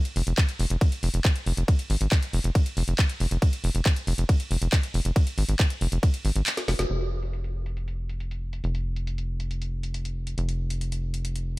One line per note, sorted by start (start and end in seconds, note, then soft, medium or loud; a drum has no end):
0.05 closed hi-hat medium
0.16 0.22 F1 loud
0.16 open hi-hat loud
0.27 0.33 F1 medium
0.27 closed hi-hat medium
0.38 kick loud
0.38 clap loud
0.38 closed hi-hat medium
0.38 ride medium
0.49 closed hi-hat medium
0.59 0.66 F1 loud
0.59 open hi-hat loud
0.70 0.77 F1 medium
0.70 closed hi-hat medium
0.81 kick loud
0.81 closed hi-hat medium
0.81 ride medium
0.92 closed hi-hat medium
1.03 1.09 F1 medium
1.03 open hi-hat loud
1.14 1.20 F1 medium
1.14 closed hi-hat medium
1.25 kick loud
1.25 clap loud
1.25 closed hi-hat medium
1.25 ride medium
1.36 closed hi-hat medium
1.46 1.53 F1 medium
1.46 open hi-hat loud
1.57 1.64 F1 medium
1.57 closed hi-hat medium
1.68 kick loud
1.68 closed hi-hat medium
1.68 ride medium
1.79 closed hi-hat medium
1.90 1.96 G#1 loud
1.90 open hi-hat loud
2.01 2.07 G#1 medium
2.01 closed hi-hat medium
2.12 kick loud
2.12 clap loud
2.12 closed hi-hat medium
2.12 ride medium
2.23 closed hi-hat medium
2.33 2.40 F1 loud
2.33 open hi-hat loud
2.44 2.51 F1 medium
2.44 closed hi-hat medium
2.55 kick loud
2.55 closed hi-hat medium
2.55 ride medium
2.66 closed hi-hat medium
2.77 2.83 F1 loud
2.77 open hi-hat loud
2.88 2.94 F1 medium
2.88 closed hi-hat medium
2.99 kick loud
2.99 clap loud
2.99 closed hi-hat medium
2.99 ride medium
3.09 closed hi-hat medium
3.20 3.27 F1 medium
3.20 open hi-hat loud
3.31 3.38 F1 medium
3.31 closed hi-hat medium
3.42 kick loud
3.42 closed hi-hat medium
3.42 ride medium
3.53 closed hi-hat medium
3.64 3.70 F1 loud
3.64 open hi-hat loud
3.75 3.81 F1 medium
3.75 closed hi-hat medium
3.86 kick loud
3.86 clap loud
3.86 closed hi-hat medium
3.86 ride medium
3.96 closed hi-hat medium
4.07 4.14 F1 loud
4.07 open hi-hat loud
4.18 4.25 F1 medium
4.18 closed hi-hat medium
4.29 kick loud
4.29 closed hi-hat medium
4.29 ride medium
4.40 closed hi-hat medium
4.51 4.57 F1 medium
4.51 open hi-hat loud
4.62 4.68 F1 medium
4.62 closed hi-hat medium
4.72 kick loud
4.72 clap loud
4.72 closed hi-hat medium
4.72 ride medium
4.83 closed hi-hat medium
4.94 5.01 F1 medium
4.94 open hi-hat loud
5.05 5.12 F1 medium
5.05 closed hi-hat medium
5.16 kick loud
5.16 closed hi-hat medium
5.16 ride medium
5.27 closed hi-hat medium
5.38 5.44 G#1 loud
5.38 open hi-hat loud
5.49 5.55 G#1 medium
5.49 closed hi-hat medium
5.59 kick loud
5.59 clap loud
5.59 closed hi-hat medium
5.59 ride medium
5.70 closed hi-hat medium
5.81 5.88 F1 loud
5.81 open hi-hat loud
5.92 5.98 F1 medium
5.92 closed hi-hat medium
6.03 kick loud
6.03 closed hi-hat medium
6.03 ride medium
6.14 closed hi-hat medium
6.25 6.31 G#1 medium
6.25 open hi-hat loud
6.36 6.42 G#1 medium
6.36 closed hi-hat medium
6.46 clap loud
6.46 closed hi-hat medium
6.46 ride medium
6.57 snare medium
6.57 closed hi-hat medium
6.68 6.75 F1 medium
6.68 snare medium
6.68 open hi-hat loud
6.79 6.85 F1 medium
6.79 snare medium
6.79 closed hi-hat medium
6.90 8.62 F1 medium
6.90 closed hi-hat medium
7.01 closed hi-hat medium
7.23 closed hi-hat medium
7.33 closed hi-hat medium
7.44 closed hi-hat medium
7.66 closed hi-hat medium
7.77 closed hi-hat medium
7.88 closed hi-hat medium
8.09 closed hi-hat medium
8.20 closed hi-hat medium
8.31 closed hi-hat medium
8.53 closed hi-hat medium
8.64 10.36 F1 medium
8.64 closed hi-hat medium
8.75 closed hi-hat medium
8.96 closed hi-hat medium
9.07 closed hi-hat medium
9.18 closed hi-hat medium
9.40 closed hi-hat medium
9.51 closed hi-hat medium
9.62 closed hi-hat medium
9.83 closed hi-hat medium
9.94 closed hi-hat medium
10.05 closed hi-hat medium
10.27 closed hi-hat medium
10.38 11.59 F1 medium
10.38 closed hi-hat medium
10.49 closed hi-hat medium
10.70 closed hi-hat medium
10.81 closed hi-hat medium
10.92 closed hi-hat medium
11.14 closed hi-hat medium
11.25 closed hi-hat medium
11.36 closed hi-hat medium